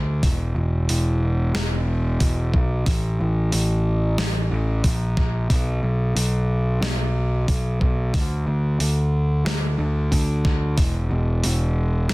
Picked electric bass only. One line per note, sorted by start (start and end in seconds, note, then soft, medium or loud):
0.00 0.20 D2 medium
0.23 0.55 E1 medium
0.56 0.88 E1 medium
0.89 1.52 E1 medium
2.21 2.52 E1 medium
2.53 2.85 B1 medium
2.86 3.18 A1 medium
3.20 3.52 A1 medium
3.53 4.16 A1 medium
4.51 4.83 A1 medium
4.84 5.48 A#1 medium
5.50 5.82 B1 medium
5.83 6.15 B1 medium
6.16 6.79 B1 medium
6.82 7.45 B1 medium
7.48 7.80 B1 medium
7.81 8.13 B1 medium
8.14 8.46 D2 medium
8.47 8.79 D2 medium
8.80 9.43 D2 medium
9.46 9.78 D2 medium
9.78 10.10 D2 medium
10.12 10.75 D2 medium
10.78 11.09 E1 medium
11.11 11.43 E1 medium
11.45 12.08 E1 medium
12.10 12.14 E1 medium